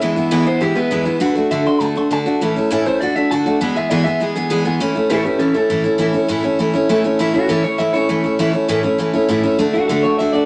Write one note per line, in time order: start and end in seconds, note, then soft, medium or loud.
0.00 0.17 E2 medium
0.00 0.17 B2 medium
0.00 0.17 E3 medium
0.00 0.16 G#3 medium
0.00 0.16 B3 medium
0.00 0.15 E4 loud
0.00 0.45 E5 loud
0.16 0.30 E3 soft
0.16 0.30 G#3 medium
0.16 0.31 B3 medium
0.16 0.31 E4 medium
0.31 0.46 E2 loud
0.31 0.47 B2 loud
0.31 0.46 E3 loud
0.31 0.46 G#3 loud
0.31 0.45 B3 loud
0.31 0.45 E4 loud
0.46 0.59 E3 soft
0.46 0.60 G#3 soft
0.46 0.61 B3 medium
0.46 0.61 E4 medium
0.46 0.62 C5 medium
0.61 0.76 E3 medium
0.61 0.75 G#3 medium
0.61 0.75 B3 medium
0.61 0.74 E4 medium
0.61 0.76 G4 loud
0.75 0.90 E3 soft
0.75 0.91 G#3 medium
0.75 0.91 B3 medium
0.75 0.91 E4 medium
0.75 1.35 B4 loud
0.91 1.06 E2 medium
0.91 1.06 B2 medium
0.91 1.06 E3 medium
0.91 1.05 G#3 medium
0.91 1.05 B3 medium
0.91 1.04 E4 medium
1.05 1.20 E3 medium
1.05 1.20 G#3 medium
1.05 1.20 B3 medium
1.05 1.21 E4 medium
1.20 1.36 D3 loud
1.20 1.36 A3 medium
1.20 1.35 D4 loud
1.20 1.34 F#4 loud
1.35 1.50 A3 medium
1.35 1.51 D4 medium
1.35 1.51 F#4 medium
1.51 1.66 D3 medium
1.51 1.67 A3 medium
1.51 1.66 D4 loud
1.51 1.65 F#4 loud
1.51 1.66 E5 loud
1.66 1.79 A3 soft
1.66 1.80 D4 soft
1.66 1.81 F#4 medium
1.66 1.82 C6 medium
1.80 1.96 D3 medium
1.80 1.96 A3 medium
1.80 1.95 D4 medium
1.80 1.94 F#4 medium
1.80 1.97 A5 loud
1.95 2.10 A3 medium
1.95 2.10 D4 medium
1.95 2.10 F#4 medium
1.95 2.12 C6 loud
2.11 2.26 D3 medium
2.11 2.26 A3 medium
2.11 2.26 D4 medium
2.11 2.25 F#4 medium
2.11 2.70 A5 loud
2.26 2.41 A3 medium
2.26 2.42 D4 medium
2.26 2.41 F#4 medium
2.41 2.56 A2 medium
2.41 2.57 E3 medium
2.41 2.57 A3 medium
2.41 2.56 C#4 medium
2.41 2.55 E4 medium
2.56 2.70 A3 soft
2.56 2.70 C#4 medium
2.56 2.71 E4 medium
2.71 2.86 A2 loud
2.71 2.86 E3 medium
2.71 2.86 A3 loud
2.71 2.86 C#4 loud
2.71 2.85 E4 loud
2.86 3.00 A3 soft
2.86 3.02 C#4 medium
2.86 3.01 E4 medium
2.86 3.00 C5 loud
3.01 3.16 D3 medium
3.01 3.16 A3 medium
3.01 3.15 D4 medium
3.01 3.15 F#4 medium
3.01 3.16 D5 medium
3.16 3.30 A3 medium
3.16 3.31 D4 medium
3.16 3.31 F#4 medium
3.16 3.30 E5 loud
3.31 3.46 D3 medium
3.31 3.46 A3 medium
3.31 3.46 D4 loud
3.31 3.45 F#4 loud
3.31 3.60 A5 loud
3.46 3.61 A3 medium
3.46 3.61 D4 medium
3.46 3.61 F#4 medium
3.61 3.76 E2 medium
3.61 3.76 B2 medium
3.61 3.76 E3 medium
3.61 3.76 G#3 medium
3.61 3.75 B3 loud
3.61 3.75 G#4 medium
3.76 3.90 E3 soft
3.76 3.90 G#3 medium
3.76 3.90 B3 medium
3.76 3.90 G#4 medium
3.76 3.90 E5 loud
3.90 4.06 E2 medium
3.90 4.06 B2 medium
3.90 4.06 E3 loud
3.90 4.06 G#3 medium
3.90 4.05 B3 loud
3.90 4.04 G#4 loud
3.90 4.04 D5 medium
4.04 4.19 E3 medium
4.04 4.20 G#3 medium
4.04 4.20 B3 medium
4.04 4.21 G#4 medium
4.04 4.19 E5 loud
4.20 4.35 E3 medium
4.20 4.35 G#3 medium
4.20 4.35 B3 medium
4.20 4.34 G#4 medium
4.35 4.49 E3 medium
4.35 4.50 G#3 medium
4.35 4.50 B3 medium
4.35 4.50 G#4 medium
4.50 4.65 E2 medium
4.50 4.66 B2 loud
4.50 4.66 E3 medium
4.50 4.64 G#3 loud
4.50 4.64 B3 medium
4.50 4.64 G#4 loud
4.65 4.79 E3 medium
4.65 4.80 G#3 medium
4.65 4.81 B3 medium
4.65 4.80 G#4 medium
4.80 4.95 A2 medium
4.80 4.96 E3 medium
4.80 4.96 A3 medium
4.80 4.95 C#4 loud
4.80 4.94 E4 loud
4.95 5.09 A3 medium
4.95 5.09 C#4 medium
4.95 5.10 E4 medium
5.10 5.25 A2 medium
5.10 5.25 E3 medium
5.10 5.25 A3 medium
5.10 5.24 C#4 medium
5.10 5.23 E4 loud
5.10 5.24 A4 medium
5.10 5.25 C#5 medium
5.24 5.39 A3 soft
5.24 5.39 C#4 soft
5.24 5.40 E4 medium
5.24 5.39 G4 medium
5.24 5.40 B4 medium
5.39 5.55 E3 medium
5.39 5.55 A3 medium
5.39 5.53 C#4 medium
5.39 5.54 C#4 medium
5.39 5.53 E4 medium
5.39 5.54 A4 medium
5.54 5.69 A3 medium
5.54 5.69 C#4 medium
5.54 5.70 E4 medium
5.54 6.42 A4 loud
5.70 5.85 A2 medium
5.70 5.85 E3 medium
5.70 5.85 A3 medium
5.70 5.84 C#4 medium
5.70 5.83 E4 medium
5.84 5.97 A3 medium
5.84 5.98 C#4 medium
5.84 5.98 E4 medium
5.98 6.14 A2 medium
5.98 6.14 E3 loud
5.98 6.14 A3 medium
5.98 6.13 C#4 loud
5.98 6.12 E4 loud
6.13 6.28 A3 medium
6.13 6.28 C#4 medium
6.13 6.28 E4 medium
6.28 6.44 A2 medium
6.28 6.44 E3 loud
6.28 6.43 A3 medium
6.28 6.43 C#4 loud
6.28 6.42 E4 loud
6.43 6.58 A3 medium
6.43 6.59 C#4 medium
6.43 6.59 E4 medium
6.59 6.74 E3 medium
6.59 6.75 A3 medium
6.59 6.74 C#4 medium
6.59 6.72 E4 medium
6.74 6.88 A3 medium
6.74 6.89 C#4 medium
6.74 6.89 E4 medium
6.89 7.05 A2 medium
6.89 7.05 E3 loud
6.89 7.04 A3 loud
6.89 7.04 C#4 loud
6.89 7.03 E4 medium
7.04 7.18 A3 medium
7.04 7.19 C#4 medium
7.04 7.19 E4 medium
7.19 7.34 A2 loud
7.19 7.35 E3 medium
7.19 7.34 A3 medium
7.19 7.34 C#4 medium
7.19 7.33 E4 loud
7.34 7.48 A3 soft
7.34 7.49 C#4 medium
7.34 7.49 E4 medium
7.34 7.48 F#4 medium
7.48 7.64 A2 medium
7.48 7.64 E3 medium
7.48 7.65 A3 medium
7.48 7.64 C#4 loud
7.48 7.63 E4 medium
7.48 7.63 A4 medium
7.64 7.78 A3 soft
7.64 7.78 C#4 soft
7.64 7.79 C#5 medium
7.78 7.94 E3 medium
7.78 7.94 A3 medium
7.78 7.94 C#4 medium
7.78 7.92 E4 medium
7.78 7.94 E5 medium
7.93 8.08 A3 medium
7.93 8.09 C#4 medium
7.93 8.09 E4 medium
7.93 8.81 C#5 loud
8.09 8.24 A2 medium
8.09 8.24 E3 medium
8.09 8.24 A3 medium
8.09 8.24 C#4 medium
8.09 8.23 E4 medium
8.24 8.38 A3 medium
8.24 8.38 C#4 medium
8.24 8.39 E4 medium
8.39 8.54 A2 medium
8.39 8.54 E3 medium
8.39 8.54 A3 loud
8.39 8.53 C#4 loud
8.39 8.52 E4 loud
8.53 8.68 A3 soft
8.53 8.68 C#4 medium
8.53 8.68 E4 medium
8.68 8.84 A2 loud
8.68 8.84 E3 loud
8.68 8.84 A3 loud
8.68 8.83 C#4 loud
8.68 8.82 E4 loud
8.83 8.98 A3 medium
8.83 8.99 C#4 medium
8.83 8.99 E4 medium
8.98 9.14 E3 medium
8.98 9.14 A3 medium
8.98 9.13 C#4 medium
8.98 9.12 E4 medium
9.13 9.28 A3 medium
9.13 9.29 C#4 medium
9.13 9.29 E4 medium
9.28 9.44 A2 loud
9.28 9.44 E3 medium
9.28 9.44 A3 medium
9.28 9.43 C#4 medium
9.28 9.42 E4 medium
9.43 9.58 A3 medium
9.43 9.59 C#4 medium
9.43 9.59 E4 medium
9.58 9.74 D3 medium
9.58 9.74 A3 medium
9.58 9.74 D4 medium
9.58 9.73 F#4 loud
9.73 9.89 A3 soft
9.73 9.89 D4 soft
9.73 9.88 F#4 loud
9.73 9.89 F#4 medium
9.88 10.04 D3 medium
9.88 10.04 A3 loud
9.88 10.03 D4 loud
9.88 10.03 F#4 loud
9.88 10.03 A4 medium
10.03 10.19 A3 soft
10.03 10.19 D4 medium
10.03 10.19 F#4 medium
10.03 10.18 C#5 medium
10.19 10.34 D3 medium
10.19 10.34 A3 medium
10.19 10.33 D4 medium
10.19 10.32 F#4 medium
10.19 10.32 E5 loud
10.33 10.46 A3 soft
10.33 10.46 D4 medium
10.33 10.46 F#4 medium
10.33 10.46 D5 loud